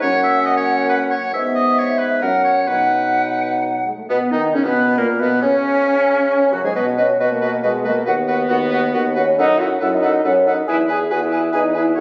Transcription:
0.01 1.16 F#2 medium
0.01 1.29 A#3 medium
0.01 1.17 C#4 medium
0.01 0.23 C#5 medium
0.01 1.29 F#5 medium
0.23 0.47 E5 medium
0.46 0.56 D#5 medium
0.57 0.89 C#5 medium
0.89 0.99 B4 medium
1.10 1.32 C#5 medium
1.33 2.18 G#2 medium
1.33 2.18 B3 medium
1.33 2.24 E5 medium
1.33 1.43 E5 medium
1.55 1.80 D#5 medium
1.78 2.00 C#5 medium
1.99 2.21 B4 medium
2.22 2.70 F#2 soft
2.22 2.68 F#3 soft
2.22 2.70 C#4 soft
2.22 2.44 A#4 medium
2.22 2.67 F#5 soft
2.44 2.69 C#5 medium
2.67 3.86 B2 soft
2.67 3.84 F#3 soft
2.67 3.86 D#4 soft
2.67 3.63 B4 medium
2.67 3.84 F#5 soft
3.86 3.91 G#3 soft
3.98 4.03 A3 soft
4.09 4.20 B2 medium
4.09 4.31 B3 medium
4.09 4.33 B3 medium
4.09 4.20 B3 medium
4.09 4.16 B4 medium
4.31 4.56 D#3 medium
4.31 4.41 D#4 medium
4.31 4.55 D#4 medium
4.31 4.42 D#4 medium
4.31 4.39 D#4 medium
4.53 4.67 C#3 medium
4.53 4.58 C#4 medium
4.53 4.65 C#4 medium
4.53 4.67 C#4 medium
4.64 5.00 B2 medium
4.64 4.97 B3 medium
4.64 5.00 B3 medium
4.64 4.99 B4 medium
4.97 5.22 A#2 medium
4.97 5.08 A#3 medium
4.97 5.22 A#3 medium
4.97 5.21 A#4 medium
5.19 5.42 B2 medium
5.19 5.42 B3 medium
5.19 5.44 B3 medium
5.19 5.42 B3 medium
5.19 5.44 B4 medium
5.41 6.54 C#3 medium
5.41 6.53 C#4 medium
5.41 6.54 C#4 medium
5.41 6.51 C#4 medium
5.41 6.52 C#4 medium
6.53 6.64 F#2 medium
6.53 6.63 F#3 medium
6.53 6.67 F#3 medium
6.53 6.64 F#4 medium
6.53 6.58 F#4 medium
6.64 6.69 G#2 medium
6.64 6.75 G#3 medium
6.64 6.76 G#3 medium
6.64 6.69 G#4 medium
6.64 6.75 G#4 medium
6.74 7.14 B2 medium
6.74 7.01 B3 medium
6.74 6.85 F#4 medium
6.74 6.86 B4 medium
6.74 6.80 D#5 medium
6.97 7.20 C#4 medium
6.97 7.08 F#4 medium
6.97 7.08 B4 medium
6.97 7.03 D#5 medium
7.19 7.58 B2 medium
7.19 7.30 B3 medium
7.19 7.30 F#4 medium
7.19 7.30 B4 medium
7.19 7.25 D#5 medium
7.31 7.63 A#3 medium
7.41 7.52 F#4 medium
7.41 7.51 B4 medium
7.41 7.48 D#5 medium
7.63 8.02 B2 medium
7.63 7.86 G#3 medium
7.63 7.73 F#4 medium
7.63 7.73 B4 soft
7.63 7.69 D#5 medium
7.84 8.06 A#3 medium
7.84 7.95 F#4 medium
7.84 7.94 B4 medium
7.84 7.91 D#5 medium
8.06 8.45 D#2 medium
8.06 9.14 B3 loud
8.06 8.16 F#4 medium
8.06 8.16 B4 medium
8.06 8.14 F#5 medium
8.28 8.38 F#4 medium
8.28 8.38 B4 medium
8.28 8.34 F#5 medium
8.49 8.89 D#2 medium
8.49 8.60 F#4 medium
8.49 8.59 B4 medium
8.49 8.56 F#5 medium
8.71 8.82 F#4 medium
8.71 8.81 B4 medium
8.71 8.79 F#5 medium
8.93 9.33 D#2 medium
8.93 9.04 F#4 medium
8.93 9.04 B4 medium
8.93 9.00 F#5 medium
9.16 9.41 C#4 loud
9.16 9.27 F#4 medium
9.16 9.26 B4 medium
9.16 9.22 F#5 medium
9.38 9.76 F#2 medium
9.38 9.62 D#4 loud
9.38 9.48 A4 medium
9.38 9.48 B4 medium
9.38 9.45 F#5 medium
9.59 9.82 F#4 loud
9.59 9.70 A4 medium
9.59 9.69 B4 medium
9.59 9.66 F#5 medium
9.80 10.19 F#2 medium
9.80 9.87 E4 medium
9.80 9.91 A4 medium
9.80 9.90 B4 medium
9.80 9.88 F#5 medium
9.93 10.24 D#4 loud
10.02 10.13 A4 medium
10.02 10.12 B4 medium
10.02 10.09 F#5 medium
10.24 10.63 F#2 medium
10.24 10.49 C#4 loud
10.24 10.34 A4 medium
10.24 10.34 B4 medium
10.24 10.31 F#5 medium
10.46 10.68 D#4 medium
10.46 10.55 A4 medium
10.46 10.57 B4 medium
10.46 10.52 F#5 medium
10.67 11.06 E2 medium
10.67 10.78 E4 loud
10.67 10.77 G#4 medium
10.67 10.78 B4 medium
10.67 10.73 G#5 medium
10.88 10.98 G#4 medium
10.88 11.11 G#4 loud
10.88 10.98 B4 medium
10.88 10.96 G#5 medium
11.09 11.49 E2 medium
11.09 11.23 F#4 medium
11.09 11.19 G#4 medium
11.09 11.20 B4 medium
11.09 11.17 G#5 medium
11.21 11.54 E4 medium
11.31 11.42 G#4 medium
11.31 11.41 B4 medium
11.31 11.38 G#5 medium
11.52 11.93 E2 medium
11.52 11.78 D#4 medium
11.52 11.63 G#4 medium
11.52 11.62 B4 soft
11.52 11.59 G#5 medium
11.73 11.99 E4 medium
11.73 11.85 G#4 medium
11.73 11.84 B4 medium
11.73 11.80 G#5 soft
11.95 12.00 C#5 medium
11.95 12.00 F#5 medium

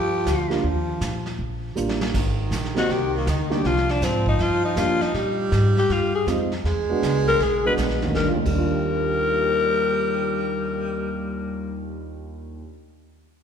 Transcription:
0.00 0.24 G2 medium
0.00 0.59 F3 medium
0.00 0.60 G4 loud
0.26 0.61 D2 medium
0.26 snare medium
0.26 hi-hat pedal medium
0.50 0.62 G3 medium
0.50 0.62 A#3 medium
0.50 0.62 D4 medium
0.50 0.62 F4 medium
0.50 snare soft
0.63 0.98 D#2 medium
0.63 1.35 F3 medium
0.63 brush sweep medium
1.01 1.36 A#2 medium
1.01 snare medium
1.01 hi-hat pedal medium
1.26 snare soft
1.39 1.74 A#1 medium
1.39 brush sweep soft
1.75 2.11 A1 medium
1.75 2.13 G3 medium
1.75 2.13 A#3 soft
1.75 2.14 D4 medium
1.75 2.14 F4 medium
1.75 hi-hat pedal medium
1.89 snare medium
2.01 snare medium
2.14 2.50 G#1 medium
2.14 3.60 D#3 medium
2.14 brush sweep soft
2.14 kick medium
2.14 snare soft
2.14 crash medium
2.51 2.87 A#1 medium
2.51 snare medium
2.51 hi-hat pedal medium
2.65 snare soft
2.75 2.87 G3 medium
2.75 2.87 A#3 medium
2.75 2.88 C4 medium
2.75 2.88 D#4 medium
2.75 2.94 F#4 medium
2.75 snare soft
2.89 3.25 C2 medium
2.89 3.15 G4 medium
2.89 brush sweep medium
2.89 snare soft
3.17 3.31 A#3 medium
3.26 3.63 D2 medium
3.26 3.53 D#4 medium
3.26 snare medium
3.26 hi-hat pedal medium
3.50 3.62 G3 medium
3.50 3.62 A#3 medium
3.50 3.63 D4 medium
3.50 3.63 G4 medium
3.50 3.68 G4 loud
3.50 snare soft
3.64 4.00 C2 medium
3.64 5.10 F3 loud
3.64 3.92 F4 medium
3.64 brush sweep soft
3.64 snare soft
3.77 snare soft
3.89 4.05 D4 medium
3.89 snare soft
4.01 4.38 G#2 medium
4.01 4.27 C4 medium
4.01 snare medium
4.01 hi-hat pedal medium
4.26 4.43 D#4 medium
4.26 kick medium
4.39 4.75 G2 medium
4.39 4.64 F4 medium
4.39 brush sweep medium
4.39 snare soft
4.65 4.80 D#4 medium
4.76 4.99 F2 medium
4.76 4.98 G3 medium
4.76 4.98 A#3 medium
4.76 4.98 D4 medium
4.76 4.99 F4 medium
4.76 5.03 F4 medium
4.76 snare medium
4.76 hi-hat pedal medium
5.01 5.39 D#4 medium
5.01 muted upright bass stroke soft
5.01 snare soft
5.14 5.50 A#2 medium
5.14 6.36 G3 loud
5.14 brush sweep soft
5.14 snare soft
5.52 5.88 G#2 medium
5.52 snare medium
5.52 hi-hat pedal soft
5.77 5.93 G4 medium
5.77 snare soft
5.90 6.26 G2 medium
5.90 6.14 F4 medium
5.90 brush sweep soft
5.90 snare soft
6.15 6.26 G#4 medium
6.26 6.63 F2 medium
6.26 6.49 G#3 medium
6.26 6.49 C4 medium
6.26 6.49 D#4 medium
6.26 6.49 F4 medium
6.26 snare medium
6.26 hi-hat pedal soft
6.52 snare soft
6.64 6.87 E2 medium
6.64 7.98 G#3 loud
6.64 brush sweep soft
6.64 snare soft
6.89 7.37 G#3 medium
6.89 7.37 B3 medium
6.89 7.37 D4 medium
6.89 7.38 F#4 medium
6.89 muted upright bass stroke soft
7.02 7.38 C#2 medium
7.02 snare medium
7.02 hi-hat pedal medium
7.27 7.44 A#4 loud
7.27 snare soft
7.40 7.76 B1 medium
7.40 7.65 G#4 medium
7.40 brush sweep soft
7.40 snare soft
7.65 8.12 G#3 medium
7.65 8.12 B3 medium
7.65 8.13 D4 medium
7.65 8.13 F#4 medium
7.65 7.73 B4 medium
7.77 8.13 A#1 medium
7.77 snare medium
7.77 hi-hat pedal medium
7.90 snare soft
8.02 8.23 D#2 medium
8.02 snare soft
8.09 8.26 D#3 medium
8.15 8.28 D#2 medium
8.15 8.29 G3 medium
8.15 8.29 A#4 medium
8.15 kick soft
8.15 snare medium
8.21 8.32 D4 medium
8.28 8.36 F4 medium
8.33 12.59 D#2 medium
8.39 12.62 D#3 medium
8.45 12.61 D#2 medium
8.45 12.65 G3 medium
8.45 11.91 G3 medium
8.45 11.92 A#4 medium
8.45 kick medium
8.45 crash medium
8.52 12.68 D4 medium
8.58 12.71 F4 medium

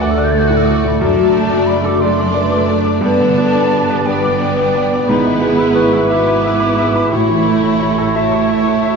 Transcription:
0.00 0.95 D2 medium
0.00 0.89 D2 medium
0.00 0.32 A3 medium
0.00 2.72 A3 medium
0.00 0.32 F#4 medium
0.00 0.74 F#4 medium
0.00 1.01 A4 medium
0.00 0.32 D5 medium
0.00 2.71 D5 medium
0.00 1.03 F#5 medium
0.00 1.03 D6 medium
0.00 0.12 D6 medium
0.11 0.20 E6 medium
0.17 0.44 D5 medium
0.17 0.26 F#6 medium
0.24 0.33 G6 medium
0.32 0.98 A3 medium
0.32 0.60 A3 medium
0.32 0.99 F#4 medium
0.32 0.98 D5 medium
0.32 0.40 A6 medium
0.39 0.49 G6 medium
0.47 0.77 A2 medium
0.47 0.58 F#6 medium
0.57 0.68 E6 medium
0.66 0.93 A3 medium
0.66 0.79 D6 medium
0.77 0.89 C#6 medium
0.84 1.01 A2 medium
0.84 1.00 B5 medium
0.99 2.99 F#1 medium
0.99 2.99 F#2 medium
0.99 1.97 A3 medium
0.99 5.09 D4 medium
0.99 1.98 D4 medium
0.99 2.00 F#4 medium
0.99 1.97 D5 medium
0.99 1.68 A5 loud
1.19 1.46 F#3 medium
1.35 1.62 A3 medium
1.51 1.78 D4 medium
1.67 1.96 D5 medium
1.67 1.87 B5 medium
1.84 2.11 A4 medium
1.84 2.02 D6 loud
2.00 3.00 A3 medium
2.00 3.00 D4 medium
2.00 2.35 A4 medium
2.00 2.28 D5 medium
2.00 3.01 D5 medium
2.00 2.75 C6 loud
2.18 2.45 D6 medium
2.34 2.69 B4 medium
2.34 2.61 D5 medium
2.51 2.78 D6 medium
2.68 3.02 A4 medium
2.68 2.96 D5 medium
2.84 3.02 D6 medium
3.01 5.08 G1 medium
3.01 5.03 G2 medium
3.01 5.08 G2 medium
3.01 7.06 B3 medium
3.01 4.04 B3 medium
3.01 4.04 D4 medium
3.01 3.38 B4 medium
3.01 5.11 D5 medium
3.01 4.04 D5 medium
3.01 4.07 A5 loud
3.20 3.47 D3 medium
3.38 3.65 B3 medium
3.38 3.71 A4 medium
3.55 3.82 D4 medium
3.71 4.06 G4 medium
3.71 3.99 D5 medium
3.90 4.17 B4 medium
4.06 5.05 B3 medium
4.06 5.06 D4 medium
4.06 4.91 B4 medium
4.06 5.06 D5 medium
4.06 4.33 D5 medium
4.06 5.07 G5 medium
4.24 4.50 D6 medium
4.42 4.68 D5 medium
4.58 4.84 D6 medium
4.75 5.01 D5 medium
4.93 5.09 D6 medium
5.07 7.07 G#1 medium
5.07 7.06 G#2 medium
5.07 7.07 G#2 medium
5.07 6.07 B3 medium
5.07 6.07 E4 medium
5.07 8.92 E4 medium
5.07 6.07 G#4 medium
5.07 6.07 B4 medium
5.07 7.12 B4 medium
5.07 5.76 B5 loud
5.25 5.52 G#3 medium
5.42 5.68 B3 medium
5.58 5.85 E4 medium
5.75 6.03 B4 medium
5.75 6.10 C#6 medium
5.92 6.19 E4 medium
6.08 7.08 B3 medium
6.08 7.08 E4 medium
6.08 6.44 F#4 medium
6.08 7.08 B4 medium
6.08 6.37 E5 medium
6.08 7.11 D6 loud
6.26 6.53 B5 medium
6.44 6.77 E4 medium
6.44 6.71 E5 medium
6.60 6.87 B5 medium
6.78 7.12 G#4 medium
6.78 7.04 E5 medium
6.96 7.11 B5 medium
7.10 8.96 A1 medium
7.10 8.96 A2 medium
7.10 8.96 A3 medium
7.10 8.12 A3 medium
7.10 8.13 E4 medium
7.10 7.45 F#4 medium
7.10 8.96 C#5 medium
7.10 8.12 C#5 medium
7.10 8.17 B5 loud
7.29 7.55 E3 medium
7.45 7.74 A3 medium
7.45 7.79 E4 medium
7.64 7.91 E4 medium
7.80 8.15 G4 medium
7.80 8.08 C#5 medium
7.98 8.25 A4 medium
8.14 8.96 A3 medium
8.14 8.96 E4 medium
8.14 8.49 F#4 medium
8.14 8.96 C#5 medium
8.14 8.43 E5 medium
8.14 8.95 A5 medium
8.32 8.60 C#6 medium
8.49 8.85 E4 medium
8.49 8.77 E5 medium
8.68 8.95 C#6 medium
8.85 8.96 F#4 medium
8.85 8.96 E5 medium

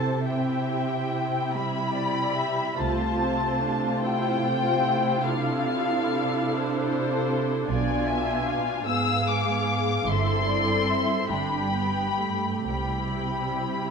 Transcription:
0.00 2.76 C3 soft
0.00 0.24 C4 soft
0.00 0.24 E4 soft
0.00 0.26 A4 soft
0.00 0.23 C5 soft
0.00 0.25 A5 medium
0.25 1.51 C4 soft
0.25 2.75 E4 soft
0.25 1.53 G4 soft
0.25 1.53 E5 soft
0.25 1.52 G5 medium
1.53 2.80 G3 soft
1.53 2.77 G4 soft
1.53 1.95 E5 soft
1.53 2.79 B5 medium
1.95 2.37 D5 soft
2.35 2.78 E5 soft
2.78 3.58 C2 soft
2.78 7.66 C3 soft
2.78 5.26 A3 soft
2.78 3.20 F4 soft
2.78 6.47 F4 soft
2.78 4.01 C5 soft
2.78 4.03 A5 medium
3.21 3.62 C4 soft
3.63 4.04 D4 soft
4.02 4.44 E4 soft
4.02 5.23 C5 soft
4.02 5.23 G5 medium
4.46 4.86 F4 medium
4.86 7.65 E4 medium
5.25 7.69 D4 medium
5.25 6.49 A4 soft
5.25 7.29 F5 medium
6.50 7.67 A4 soft
6.50 7.69 C5 medium
7.69 8.44 B1 medium
7.69 8.86 B2 medium
7.69 8.85 D4 medium
7.69 8.87 F4 soft
7.69 8.08 D5 medium
7.69 8.83 G#5 medium
8.09 8.48 E5 medium
8.47 10.07 F5 medium
8.86 10.05 G#2 medium
8.86 10.07 B3 soft
8.86 10.07 G#4 soft
8.86 9.27 E6 medium
9.27 10.07 D6 medium
10.06 10.83 G1 soft
10.06 11.27 G2 soft
10.06 11.28 C4 soft
10.06 11.30 E4 soft
10.06 11.31 A4 soft
10.06 10.48 E5 soft
10.06 11.31 C6 medium
10.47 10.87 D5 soft
10.89 11.30 E5 soft
11.29 12.15 G1 soft
11.29 12.64 G2 soft
11.29 11.73 D4 soft
11.29 12.64 G4 soft
11.29 12.67 G5 soft
11.29 12.64 B5 medium
11.74 12.19 B3 soft
12.20 12.67 A3 soft
12.66 13.60 C2 soft
12.66 13.90 C3 soft
12.66 13.90 G3 soft
12.66 13.90 E4 soft
12.66 13.90 G4 soft
12.66 13.90 G5 soft
12.66 13.90 B5 medium

